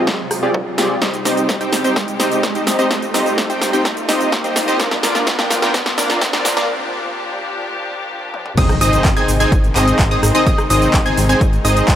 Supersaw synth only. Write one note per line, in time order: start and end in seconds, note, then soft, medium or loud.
0.00 0.10 C4 medium
0.00 0.10 F4 medium
0.00 0.10 G4 medium
0.00 0.10 G#4 medium
0.00 0.10 D#5 medium
0.43 0.75 C4 medium
0.43 0.75 F4 medium
0.43 0.75 G4 medium
0.43 0.75 G#4 medium
0.43 0.75 D5 medium
0.78 0.98 C4 medium
0.78 0.98 F4 medium
0.78 0.98 G4 medium
0.78 0.98 G#4 medium
0.78 0.98 D5 loud
1.02 1.17 C4 medium
1.02 1.17 D#4 medium
1.02 1.17 G4 medium
1.02 1.17 C5 medium
1.02 1.17 D#5 loud
1.25 1.58 C4 medium
1.25 1.58 D#4 medium
1.25 1.58 G4 medium
1.25 1.58 C5 medium
1.25 1.58 D#5 loud
1.61 1.76 C4 medium
1.61 1.76 D#4 medium
1.61 1.76 G4 medium
1.61 1.76 C5 medium
1.61 1.76 G5 loud
1.84 1.99 C4 medium
1.84 1.99 D#4 medium
1.84 1.99 G4 medium
1.84 1.99 C5 medium
1.84 1.99 G5 medium
2.20 2.52 C4 loud
2.20 2.52 D#4 medium
2.20 2.52 G4 medium
2.20 2.52 C5 medium
2.20 2.52 D#5 loud
2.55 2.76 C4 medium
2.55 2.76 D#4 medium
2.55 2.76 G4 medium
2.55 2.76 C5 medium
2.55 2.76 D#5 loud
2.79 2.88 C4 loud
2.79 2.88 D#4 medium
2.79 2.88 G4 medium
2.79 2.88 C5 medium
2.79 2.88 D#5 loud
2.91 3.06 G4 medium
3.14 3.47 C4 medium
3.14 3.47 D#4 medium
3.14 3.47 G4 medium
3.14 3.47 C5 medium
3.14 3.47 D#5 loud
3.50 3.65 C4 loud
3.50 3.65 D#4 medium
3.50 3.65 G4 medium
3.50 3.65 C5 medium
3.50 3.65 G5 loud
3.73 3.88 C4 medium
3.73 3.88 D#4 medium
3.73 3.88 G4 medium
3.73 3.88 C5 medium
3.73 3.88 G5 medium
4.09 4.41 C4 medium
4.09 4.41 D#4 medium
4.09 4.41 G4 medium
4.09 4.41 C5 medium
4.09 4.41 D#5 loud
4.44 4.65 C4 medium
4.44 4.65 D#4 medium
4.44 4.65 G4 medium
4.44 4.65 C5 medium
4.44 4.65 D#5 loud
4.68 4.77 C4 medium
4.68 4.77 D#4 medium
4.68 4.77 G4 medium
4.68 4.77 C5 medium
4.68 4.77 D#5 loud
4.80 4.95 A#3 medium
4.80 4.95 D4 medium
4.80 4.95 F4 medium
4.80 4.95 A#4 medium
4.80 4.95 D5 loud
5.03 5.36 A#3 loud
5.03 5.36 D4 medium
5.03 5.36 F4 medium
5.03 5.36 A#4 medium
5.03 5.36 D5 loud
5.39 5.54 A#3 loud
5.39 5.54 D4 medium
5.39 5.54 F4 medium
5.39 5.54 A#4 medium
5.39 5.54 G5 loud
5.62 5.77 A#3 medium
5.62 5.77 D4 medium
5.62 5.77 F4 medium
5.62 5.77 A#4 medium
5.62 5.77 G5 medium
5.98 6.30 A#3 loud
5.98 6.30 D4 medium
5.98 6.30 F4 medium
5.98 6.30 A#4 medium
5.98 6.30 D5 loud
6.33 6.54 A#3 medium
6.33 6.54 D4 medium
6.33 6.54 F4 medium
6.33 6.54 A#4 medium
6.33 6.54 D5 loud
6.57 6.66 A#3 loud
6.57 6.66 D4 medium
6.57 6.66 F4 medium
6.57 6.66 A#4 medium
6.57 6.66 D5 loud
8.58 8.73 C4 medium
8.58 8.73 D#4 medium
8.58 8.73 G#4 medium
8.58 8.73 C5 medium
8.58 8.73 D#5 loud
8.81 9.14 C4 medium
8.81 9.14 D#4 medium
8.81 9.14 G#4 medium
8.81 9.14 C5 medium
8.81 9.14 D#5 loud
9.17 9.32 C4 loud
9.17 9.32 D#4 medium
9.17 9.32 G#4 loud
9.17 9.32 C5 medium
9.17 9.32 G#5 loud
9.40 9.55 C4 medium
9.40 9.55 D#4 medium
9.40 9.55 G#4 medium
9.40 9.55 C5 medium
9.40 9.55 G#5 medium
9.76 10.08 C4 medium
9.76 10.08 D#4 medium
9.76 10.08 G#4 medium
9.76 10.08 C5 medium
9.76 10.08 D#5 loud
10.11 10.32 C4 medium
10.11 10.32 D#4 medium
10.11 10.32 G#4 medium
10.11 10.32 C5 medium
10.11 10.32 D#5 loud
10.35 10.44 C4 loud
10.35 10.44 D#4 medium
10.35 10.44 G#4 medium
10.35 10.44 C5 medium
10.35 10.44 D#5 loud
10.70 11.03 C4 medium
10.70 11.03 D#4 medium
10.70 11.03 G#4 medium
10.70 11.03 C5 medium
10.70 11.03 D#5 loud
11.06 11.21 C4 loud
11.06 11.21 D#4 medium
11.06 11.21 G#4 medium
11.06 11.21 C5 medium
11.06 11.21 G#5 loud
11.29 11.44 C4 medium
11.29 11.44 D#4 medium
11.29 11.44 G#4 medium
11.29 11.44 C5 medium
11.29 11.44 G#5 medium
11.65 11.96 C4 medium
11.65 11.96 D#4 medium
11.65 11.96 G#4 medium
11.65 11.96 C5 medium
11.65 11.96 D#5 loud